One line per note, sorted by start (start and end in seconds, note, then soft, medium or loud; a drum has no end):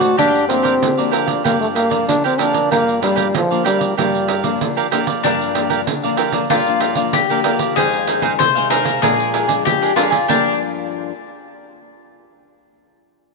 0.00 0.15 A2 medium
0.00 0.18 F#4 loud
0.00 0.18 F#4 medium
0.00 0.16 A4 soft
0.00 0.16 C5 soft
0.00 0.16 D5 medium
0.00 pandeiro medium
0.17 0.78 G2 medium
0.17 0.37 F3 medium
0.17 0.37 A#3 medium
0.17 0.48 D4 loud
0.17 0.37 D4 medium
0.17 0.47 G4 medium
0.17 4.88 G4 medium
0.17 0.47 A#4 medium
0.17 0.48 D5 medium
0.17 0.48 F5 medium
0.17 pandeiro medium
0.36 pandeiro soft
0.48 0.92 F3 medium
0.48 0.92 A#3 medium
0.48 1.13 C4 loud
0.48 0.92 D4 medium
0.48 0.62 G4 medium
0.48 0.63 A#4 medium
0.48 0.63 D5 medium
0.48 0.63 F5 medium
0.48 pandeiro medium
0.63 0.73 G4 medium
0.63 0.74 A#4 medium
0.63 0.74 D5 medium
0.63 0.74 F5 medium
0.63 pandeiro medium
0.82 1.42 D3 medium
0.82 pandeiro medium
0.97 1.40 F3 medium
0.97 1.40 A#3 medium
0.97 1.40 D4 medium
0.97 1.11 A#4 soft
0.97 1.11 D5 soft
0.97 1.12 F5 soft
0.97 pandeiro soft
1.11 1.27 G4 medium
1.11 1.27 A#4 medium
1.11 1.26 D5 medium
1.11 1.25 F5 medium
1.11 pandeiro medium
1.26 1.43 A#4 soft
1.26 1.43 D5 soft
1.26 1.42 F5 medium
1.26 pandeiro medium
1.44 2.05 G2 medium
1.44 1.74 F3 medium
1.44 1.74 A#3 medium
1.44 1.60 A#3 loud
1.44 1.75 D4 medium
1.44 1.74 G4 medium
1.44 1.74 A#4 medium
1.44 1.75 D5 medium
1.44 1.76 F5 medium
1.44 pandeiro medium
1.61 1.68 A3 medium
1.61 pandeiro soft
1.75 2.05 A#3 medium
1.75 1.90 G4 medium
1.75 1.90 A#4 soft
1.75 1.90 D5 medium
1.75 1.88 F5 medium
1.75 pandeiro medium
1.90 2.34 F3 medium
1.90 2.34 A#3 medium
1.90 2.34 D4 medium
1.90 2.22 A#4 soft
1.90 2.22 D5 soft
1.90 2.21 F5 soft
1.90 pandeiro medium
2.08 2.68 D3 medium
2.08 2.23 D4 loud
2.08 pandeiro medium
2.24 2.41 C4 medium
2.24 2.33 G4 medium
2.24 2.33 A#4 medium
2.24 2.33 D5 medium
2.24 2.33 F5 medium
2.24 pandeiro soft
2.38 2.97 F3 medium
2.38 2.97 A#3 medium
2.38 2.98 D4 medium
2.38 2.71 D4 loud
2.38 2.53 G4 medium
2.38 2.54 A#4 medium
2.38 2.53 D5 medium
2.38 2.52 F5 medium
2.38 pandeiro medium
2.53 2.70 A#4 soft
2.53 2.69 D5 soft
2.53 2.69 F5 soft
2.53 pandeiro medium
2.71 3.31 G2 medium
2.71 3.01 A#3 loud
2.71 3.01 G4 medium
2.71 3.01 A#4 medium
2.71 3.02 D5 medium
2.71 3.02 F5 medium
2.71 pandeiro medium
2.88 pandeiro soft
3.01 3.32 F3 medium
3.01 3.32 G3 medium
3.01 3.32 A#3 medium
3.01 3.32 D4 medium
3.01 3.15 G4 medium
3.01 3.15 A#4 medium
3.01 3.16 D5 medium
3.01 3.16 F5 medium
3.01 pandeiro medium
3.16 3.26 G4 medium
3.16 3.26 A#4 medium
3.16 3.27 D5 medium
3.16 3.27 F5 medium
3.16 pandeiro medium
3.34 3.94 D3 medium
3.34 3.65 F3 medium
3.34 pandeiro medium
3.50 3.93 F3 medium
3.50 3.93 A#3 medium
3.50 3.93 D4 medium
3.50 3.64 A#4 soft
3.50 3.65 D5 soft
3.50 3.65 F5 soft
3.50 pandeiro soft
3.64 3.95 G3 medium
3.64 3.80 G4 medium
3.64 3.79 A#4 medium
3.64 3.79 D5 medium
3.64 3.78 F5 medium
3.64 pandeiro medium
3.79 3.96 A#4 soft
3.79 3.95 D5 soft
3.79 3.95 F5 soft
3.79 pandeiro medium
3.97 4.58 G2 medium
3.97 4.28 F3 medium
3.97 4.57 G3 medium
3.97 4.28 A#3 medium
3.97 4.28 D4 medium
3.97 4.26 G4 medium
3.97 4.27 A#4 medium
3.97 4.28 D5 medium
3.97 4.28 F5 medium
3.97 pandeiro medium
4.15 pandeiro soft
4.28 4.43 G4 soft
4.28 4.43 A#4 soft
4.28 4.43 D5 soft
4.28 4.42 F5 medium
4.28 pandeiro medium
4.43 4.87 F3 medium
4.43 4.87 A#3 medium
4.43 4.87 D4 medium
4.43 4.75 A#4 soft
4.43 4.75 D5 soft
4.43 4.74 F5 soft
4.43 pandeiro medium
4.61 5.21 D3 medium
4.61 pandeiro medium
4.77 4.86 G4 medium
4.77 4.86 A#4 medium
4.77 4.86 D5 medium
4.77 4.86 F5 medium
4.77 pandeiro soft
4.91 5.21 F3 medium
4.91 5.22 A#3 medium
4.91 5.22 D4 medium
4.91 5.06 G4 medium
4.91 5.07 A#4 medium
4.91 5.06 D5 medium
4.91 5.06 F5 medium
4.91 pandeiro medium
5.07 5.23 A#4 soft
5.07 5.22 D5 soft
5.07 5.22 F5 medium
5.07 pandeiro medium
5.24 5.85 G2 medium
5.24 5.51 F3 medium
5.24 5.51 A#3 medium
5.24 6.54 D4 medium
5.24 5.51 D4 medium
5.24 5.53 G4 medium
5.24 5.54 A#4 medium
5.24 5.54 D5 medium
5.24 5.55 F5 medium
5.24 pandeiro medium
5.41 pandeiro soft
5.54 5.85 F3 medium
5.54 5.85 A#3 medium
5.54 5.85 D4 medium
5.54 5.69 G4 soft
5.54 5.69 A#4 medium
5.54 5.69 D5 soft
5.54 5.69 F5 medium
5.54 pandeiro medium
5.70 5.80 G4 medium
5.70 5.80 A#4 medium
5.70 5.80 D5 medium
5.70 5.80 F5 medium
5.70 pandeiro medium
5.87 6.47 D3 medium
5.87 pandeiro medium
6.03 6.30 F3 medium
6.03 6.30 A#3 medium
6.03 6.31 D4 medium
6.03 6.17 A#4 soft
6.03 6.18 D5 soft
6.03 6.18 F5 soft
6.03 pandeiro soft
6.17 6.33 G4 medium
6.17 6.33 A#4 medium
6.17 6.32 D5 medium
6.17 6.31 F5 medium
6.17 pandeiro medium
6.32 6.45 F3 medium
6.32 6.45 A#3 medium
6.32 6.45 D4 medium
6.32 6.49 A#4 soft
6.32 6.49 D5 soft
6.32 6.48 F5 soft
6.32 pandeiro medium
6.50 7.11 G2 medium
6.50 6.61 F3 medium
6.50 6.62 A#3 medium
6.50 6.62 D4 medium
6.50 7.09 F4 medium
6.50 6.79 G4 medium
6.50 6.80 A#4 medium
6.50 6.80 D5 medium
6.50 6.80 F5 medium
6.50 pandeiro medium
6.67 6.93 F3 medium
6.67 6.94 A#3 medium
6.67 6.94 D4 medium
6.67 pandeiro soft
6.80 6.96 G4 soft
6.80 6.96 A#4 medium
6.80 6.96 D5 medium
6.80 6.95 F5 medium
6.80 pandeiro medium
6.95 7.24 F3 medium
6.95 7.24 A#3 medium
6.95 7.24 D4 medium
6.95 7.28 A#4 soft
6.95 7.28 D5 soft
6.95 7.27 F5 soft
6.95 pandeiro medium
7.13 7.74 D3 medium
7.13 7.73 G4 medium
7.13 pandeiro medium
7.30 7.41 F3 medium
7.30 7.41 A#3 medium
7.30 7.41 D4 medium
7.30 7.39 G4 medium
7.30 7.39 A#4 medium
7.30 7.39 D5 medium
7.30 7.39 F5 medium
7.30 pandeiro soft
7.44 7.74 F3 medium
7.44 7.74 A#3 medium
7.44 7.75 D4 medium
7.44 7.59 G4 medium
7.44 7.59 A#4 medium
7.44 7.59 D5 medium
7.44 7.58 F5 medium
7.44 pandeiro medium
7.59 7.75 A#4 soft
7.59 7.75 D5 medium
7.59 7.75 F5 medium
7.59 pandeiro medium
7.76 8.37 F2 medium
7.76 8.19 D#3 medium
7.76 8.20 G#3 medium
7.76 8.20 C4 medium
7.76 8.06 D#4 medium
7.76 8.41 G#4 loud
7.76 8.06 G#4 medium
7.76 8.07 C5 medium
7.76 8.07 F5 medium
7.76 pandeiro medium
7.94 pandeiro soft
8.07 8.21 D#4 soft
8.07 8.21 G#4 medium
8.07 8.21 C5 medium
8.07 8.22 F5 medium
8.07 pandeiro medium
8.22 8.50 D#3 medium
8.22 8.50 G#3 medium
8.22 8.50 C4 medium
8.22 8.32 D#4 medium
8.22 8.32 G#4 medium
8.22 8.32 C5 medium
8.22 8.33 F5 medium
8.22 pandeiro medium
8.39 9.00 C3 medium
8.39 8.69 C5 loud
8.39 pandeiro medium
8.55 8.98 D#3 medium
8.55 8.98 G#3 medium
8.55 8.99 C4 medium
8.55 8.69 G#4 soft
8.55 8.70 C5 soft
8.55 8.70 F5 medium
8.55 pandeiro soft
8.70 8.85 D#4 medium
8.70 8.85 G#4 medium
8.70 9.00 A#4 medium
8.70 8.84 C5 medium
8.70 8.83 F5 medium
8.70 pandeiro medium
8.85 9.01 G#4 soft
8.85 9.01 C5 soft
8.85 9.01 F5 medium
8.85 pandeiro medium
9.02 9.63 A#2 medium
9.02 9.45 F3 medium
9.02 9.45 G#3 medium
9.02 9.32 D4 medium
9.02 9.45 D4 medium
9.02 9.65 G#4 medium
9.02 9.32 A#4 medium
9.02 9.33 D5 medium
9.02 9.33 G#5 medium
9.02 pandeiro medium
9.20 pandeiro soft
9.33 9.48 D4 medium
9.33 9.48 A#4 medium
9.33 9.47 D5 medium
9.33 9.47 G#5 medium
9.33 pandeiro medium
9.48 9.92 F3 medium
9.48 9.92 G#3 medium
9.48 9.92 D4 medium
9.48 9.80 A#4 soft
9.48 9.80 D5 soft
9.48 9.80 G#5 soft
9.48 pandeiro medium
9.65 10.26 F2 medium
9.65 9.96 G4 medium
9.65 pandeiro medium
9.82 9.91 D4 medium
9.82 9.91 A#4 medium
9.82 9.91 D5 medium
9.82 9.91 G#5 medium
9.82 pandeiro soft
9.96 10.16 F3 medium
9.96 10.16 G#3 medium
9.96 10.11 D4 medium
9.96 10.16 D4 medium
9.96 10.26 F4 medium
9.96 10.11 A#4 medium
9.96 10.10 D5 medium
9.96 10.09 G#5 medium
9.96 pandeiro medium
10.10 10.27 A#4 soft
10.10 10.27 D5 soft
10.10 10.27 G#5 medium
10.10 pandeiro medium
10.28 11.11 G2 medium
10.28 11.11 F3 medium
10.28 11.11 A#3 medium
10.28 10.58 D4 medium
10.28 11.11 D4 medium
10.28 10.54 G4 medium
10.28 10.54 A#4 medium
10.28 10.55 D5 medium
10.28 10.55 F5 medium
10.28 pandeiro medium